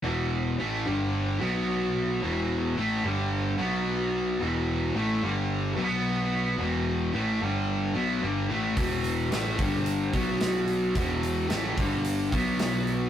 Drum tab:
HH |--------|--------|--------|--------|
SD |--------|--------|--------|--------|
BD |--------|--------|--------|--------|

HH |oooooooo|oooooooo|
SD |--o---o-|--o---o-|
BD |o--o-o--|o--o-o--|